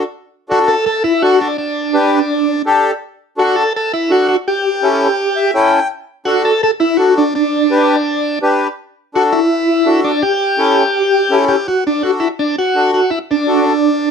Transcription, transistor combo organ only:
0.51 0.59 F#4 medium
0.68 0.85 A4 medium
0.86 1.03 A4 loud
1.04 1.23 E4 medium
1.22 1.39 F#4 loud
1.41 1.57 D4 medium
1.58 2.62 D4 medium
3.39 3.56 F#4 medium
3.56 3.73 A4 medium
3.76 3.92 A4 loud
3.93 4.11 E4 medium
4.12 4.27 F#4 medium
4.29 4.37 F#4 medium
4.48 5.51 G4 medium
6.25 6.43 F#4 medium
6.45 6.61 A4 medium
6.63 6.71 A4 loud
6.80 6.97 E4 medium
6.97 7.14 F#4 medium
7.17 7.34 D4 medium
7.35 8.39 D4 medium
9.15 9.23 F#4 medium
9.32 10.00 E4 medium
10.04 10.23 D4 medium
10.23 11.45 G4 loud
11.48 11.67 G4 medium
11.68 11.84 F#4 medium
11.87 12.03 D4 medium
12.03 12.11 F#4 medium
12.20 12.28 E4 medium
12.39 12.56 D4 medium
12.58 12.91 F#4 loud
12.94 13.10 F#4 medium
13.11 13.19 E4 medium
13.31 14.11 D4 medium

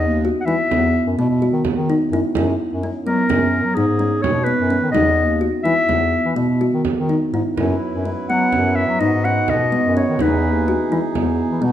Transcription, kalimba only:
0.25 0.41 F#4 medium
0.48 0.64 E4 medium
0.72 1.04 B3 medium
1.19 1.35 B3 medium
1.42 1.75 F#4 medium
1.90 2.06 D#4 medium
2.13 2.29 E4 medium
2.37 2.69 E4 medium
2.83 2.99 C#4 medium
3.07 3.23 B3 medium
3.29 3.62 C#4 medium
3.77 3.93 D#4 medium
3.99 4.32 C#4 medium
4.46 4.63 B3 medium
4.70 4.87 C#4 medium
4.95 5.27 D#4 medium
5.41 5.58 F#4 medium
5.65 5.82 E4 medium
5.89 6.22 B3 medium
6.36 6.53 B3 medium
6.61 6.94 F#4 medium
7.09 7.26 D#4 medium
7.34 7.50 E4 medium
7.58 7.91 E4 medium
8.05 8.22 C#4 medium
8.30 8.46 B3 medium
8.53 8.86 C#4 medium
9.01 9.17 D#4 medium
9.25 9.58 C#4 medium
9.72 9.89 B3 medium
9.97 10.13 C#4 medium
10.21 10.53 D#4 medium
10.68 10.84 F#4 medium
10.92 11.08 E4 medium
11.15 11.48 B3 medium
11.62 11.72 B3 medium

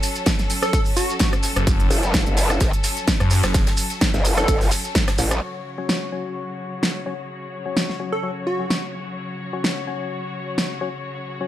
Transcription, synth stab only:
5.78 6.10 F#3 medium
5.78 6.10 C#4 medium
5.78 6.10 F#4 medium
5.78 6.10 C#5 medium
6.12 7.03 F#3 medium
6.12 7.03 C#4 medium
6.12 7.03 F#4 medium
6.12 7.03 C#5 medium
7.06 7.14 F#3 medium
7.06 7.14 C#4 medium
7.06 7.14 F#4 medium
7.06 7.14 C#5 medium
7.66 7.97 F#3 medium
7.66 7.97 C#4 medium
7.66 7.97 F#4 medium
7.66 7.97 C#5 medium
8.00 8.12 F#3 medium
8.00 8.12 C#4 medium
8.00 8.12 F#4 medium
8.00 8.12 C#5 medium
8.23 8.31 F#3 medium
8.23 8.31 C#4 medium
8.23 8.31 F#4 medium
8.23 8.31 C#5 medium
8.60 8.66 F#3 medium
8.60 8.66 C#4 medium
8.60 8.66 F#4 medium
8.60 8.66 C#5 medium
9.53 9.85 F#3 medium
9.53 9.85 C#4 medium
9.53 9.85 F#4 medium
9.53 9.85 C#5 medium
9.87 10.79 F#3 medium
9.87 10.79 C#4 medium
9.87 10.79 F#4 medium
9.87 10.79 C#5 medium
10.81 10.89 F#3 medium
10.81 10.89 C#4 medium
10.81 10.89 F#4 medium
10.81 10.89 C#5 medium
11.41 11.47 F#3 medium
11.41 11.47 C#4 medium
11.41 11.47 F#4 medium
11.41 11.47 C#5 medium

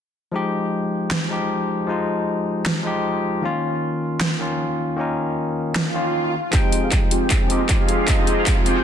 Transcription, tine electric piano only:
0.32 1.27 F3 medium
0.32 1.28 G#3 medium
0.32 1.29 D#4 medium
0.36 1.29 G4 loud
1.29 1.86 F3 medium
1.29 1.86 G#3 medium
1.29 1.87 D#4 medium
1.33 1.88 G4 medium
1.87 2.82 F3 medium
1.87 2.83 G#3 medium
1.87 2.84 D#4 medium
1.87 2.84 F4 medium
2.83 3.40 F3 medium
2.83 3.41 G#3 medium
2.83 3.42 D#4 medium
2.87 3.42 G4 loud
3.41 4.37 D#3 medium
3.41 4.38 A#3 medium
3.41 4.38 C#4 medium
3.41 4.39 F4 loud
4.38 4.95 D#3 medium
4.38 4.96 A#3 medium
4.38 4.97 C#4 medium
4.38 4.97 F4 medium
4.96 5.92 D#3 medium
4.96 5.93 A#3 medium
4.96 5.93 C#4 medium
4.96 5.94 D#4 medium
5.94 6.32 D#3 medium
5.94 6.32 A#3 medium
5.94 6.33 C#4 medium
5.94 6.33 F4 medium
6.51 7.47 F3 medium
6.51 7.47 G#3 medium
6.51 7.48 D#4 medium
6.55 7.49 G5 loud
7.48 8.05 F3 medium
7.48 8.06 G#3 medium
7.48 8.06 D#4 medium
7.48 8.07 G4 medium
8.06 8.84 F3 medium
8.06 8.84 G#3 medium
8.06 8.84 D#4 medium
8.06 8.84 F4 loud

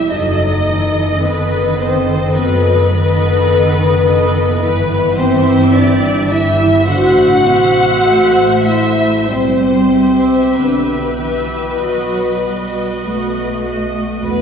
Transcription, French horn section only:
0.10 1.17 D#4 medium
1.17 1.24 C4 soft
1.23 1.80 B3 medium
1.80 2.36 C4 medium
2.36 4.44 B3 medium
4.61 5.15 B3 medium
5.18 5.73 C4 medium
5.74 6.30 D4 medium
6.31 6.88 E4 medium
6.87 8.66 F#4 medium
8.66 9.27 E4 medium
9.29 10.55 C4 medium
10.55 13.64 B3 soft
14.24 14.42 B3 medium

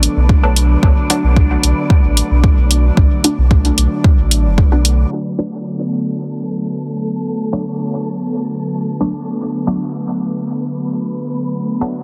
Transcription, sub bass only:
0.17 0.34 B1 medium
0.43 0.76 B1 loud
0.83 0.92 B1 loud
1.24 1.57 B1 medium
1.63 1.73 B1 medium
2.04 2.22 A1 loud
2.31 2.49 B1 medium
2.58 2.91 B1 loud
2.97 3.07 B1 loud
3.38 3.71 B1 medium
3.78 3.87 B1 medium
4.18 4.47 A1 loud
4.45 4.63 F#1 medium
4.72 5.05 B1 medium

